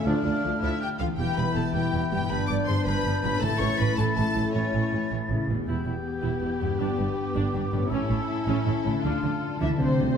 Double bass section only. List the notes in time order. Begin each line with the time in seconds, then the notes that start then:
0.06 D2
0.25 D2
0.44 D2
0.63 D2
1.00 D2
1.18 E1
1.37 E1
1.55 E1
1.74 E1
1.93 E1
2.12 E1
2.31 G1
2.49 G1
2.68 G1
2.86 G1
3.04 G1
3.24 G1
3.42 A1
3.61 A1
3.80 A1
3.98 A1
4.17 A1
4.36 A1
4.55 A1
4.74 A1
4.93 A1
5.12 A1
5.30 A1
5.48 A1
5.67 E1
5.86 E1
6.24 E1
6.42 E1
6.61 E1
6.80 G1
6.99 G1
7.36 G1
7.54 G1
7.73 G1
7.90 A1
8.10 A1
8.48 A1
8.67 A1
8.86 A1
9.05 D2
9.24 D2
9.62 D2
9.80 D2
9.99 D2